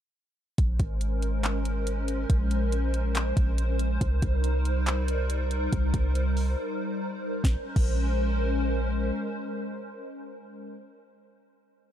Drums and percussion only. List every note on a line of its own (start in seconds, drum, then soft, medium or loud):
0.58 kick loud
0.58 closed hi-hat medium
0.80 kick loud
0.80 closed hi-hat medium
1.01 closed hi-hat medium
1.22 closed hi-hat medium
1.44 clap loud
1.44 closed hi-hat medium
1.65 closed hi-hat medium
1.87 closed hi-hat medium
2.08 closed hi-hat medium
2.30 kick loud
2.30 closed hi-hat medium
2.51 closed hi-hat medium
2.72 closed hi-hat medium
2.94 closed hi-hat medium
3.15 clap loud
3.15 closed hi-hat medium
3.37 kick medium
3.37 closed hi-hat medium
3.58 closed hi-hat medium
3.79 closed hi-hat medium
4.01 kick loud
4.01 closed hi-hat medium
4.22 kick loud
4.22 closed hi-hat medium
4.44 closed hi-hat medium
4.65 closed hi-hat medium
4.87 clap loud
4.87 closed hi-hat medium
5.08 closed hi-hat medium
5.30 closed hi-hat medium
5.51 closed hi-hat medium
5.73 kick loud
5.73 closed hi-hat medium
5.94 kick loud
5.94 closed hi-hat medium
6.15 closed hi-hat medium
6.37 open hi-hat medium
7.44 kick loud
7.44 snare medium
7.76 kick loud
7.76 crash medium